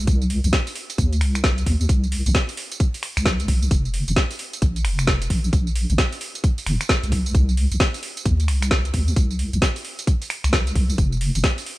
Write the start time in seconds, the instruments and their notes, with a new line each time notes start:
0.07 wobble bass C2, kick, closed hi-hat, tambourine
0.22 tambourine
0.30 open hi-hat
0.44 wobble bass C2, closed hi-hat, tambourine
0.53 kick, snare, tambourine
0.67 open hi-hat, tambourine
0.76 open hi-hat
0.90 closed hi-hat, tambourine
0.98 wobble bass D#2, kick, closed hi-hat, tambourine
1.13 closed hi-hat, tambourine
1.21 wobble bass C2, finger snap, open hi-hat
1.35 finger snap, closed hi-hat, tambourine
1.44 kick, snare, tambourine
1.58 closed hi-hat, tambourine
1.66 wobble bass D#2, kick, open hi-hat
1.81 tambourine
1.89 wobble bass C2, kick, closed hi-hat, tambourine
2.03 tambourine
2.12 open hi-hat
2.26 wobble bass C2, closed hi-hat, tambourine
2.35 kick, snare
2.49 open hi-hat, tambourine
2.57 open hi-hat
2.72 closed hi-hat, tambourine
2.80 kick, closed hi-hat, tambourine
2.94 open hi-hat, tambourine
3.03 finger snap, open hi-hat
3.17 wobble bass C2, finger snap, closed hi-hat, tambourine
3.26 kick, snare, tambourine
3.40 closed hi-hat, tambourine
3.48 wobble bass C2, kick, open hi-hat
3.62 tambourine
3.71 wobble bass F1, kick, closed hi-hat, tambourine
3.85 tambourine
3.94 open hi-hat
4.08 wobble bass F1, closed hi-hat, tambourine
4.16 kick, snare, tambourine
4.31 open hi-hat, tambourine
4.39 open hi-hat
4.53 closed hi-hat, tambourine
4.62 wobble bass A#1, kick, closed hi-hat, tambourine
4.76 closed hi-hat, tambourine
4.85 wobble bass F1, finger snap, open hi-hat
4.99 finger snap, closed hi-hat, tambourine
5.07 kick, snare, tambourine
5.22 closed hi-hat, tambourine
5.30 wobble bass A#1, kick, open hi-hat
5.44 tambourine
5.53 wobble bass A#1, kick, closed hi-hat, tambourine
5.67 tambourine
5.76 open hi-hat
5.90 wobble bass A#1, closed hi-hat, tambourine
5.98 kick, snare, tambourine
6.12 open hi-hat, tambourine
6.21 open hi-hat
6.35 closed hi-hat, tambourine
6.44 kick, closed hi-hat, tambourine
6.58 open hi-hat, tambourine
6.66 wobble bass F1, finger snap, open hi-hat
6.81 finger snap, closed hi-hat, tambourine
6.89 kick, snare, tambourine
7.03 wobble bass C2, closed hi-hat, tambourine
7.12 kick, open hi-hat
7.26 tambourine
7.35 wobble bass C2, kick, closed hi-hat, tambourine
7.49 tambourine
7.57 open hi-hat
7.72 wobble bass C2, closed hi-hat, tambourine
7.80 kick, snare, tambourine
7.94 open hi-hat, tambourine
8.03 open hi-hat
8.17 closed hi-hat, tambourine
8.25 wobble bass D#2, kick, closed hi-hat, tambourine
8.40 closed hi-hat, tambourine
8.48 wobble bass C2, finger snap, open hi-hat
8.62 finger snap, closed hi-hat, tambourine
8.71 kick, snare
8.85 closed hi-hat, tambourine
8.94 wobble bass D#2, kick, open hi-hat
9.08 tambourine
9.16 wobble bass C2, kick, closed hi-hat, tambourine
9.31 tambourine
9.39 open hi-hat
9.53 wobble bass C2, closed hi-hat, tambourine
9.62 kick, snare, tambourine
9.76 open hi-hat, tambourine
9.85 open hi-hat
9.99 closed hi-hat, tambourine
10.07 kick, closed hi-hat, tambourine
10.22 open hi-hat, tambourine
10.30 finger snap, open hi-hat
10.44 wobble bass C2, finger snap, closed hi-hat, tambourine
10.53 kick, snare, tambourine
10.67 closed hi-hat, tambourine
10.75 wobble bass C2, kick, open hi-hat
10.90 tambourine
10.98 wobble bass F1, kick, closed hi-hat, tambourine
11.12 tambourine
11.21 open hi-hat
11.35 wobble bass F1, closed hi-hat, tambourine
11.44 kick, snare
11.58 open hi-hat, tambourine
11.66 open hi-hat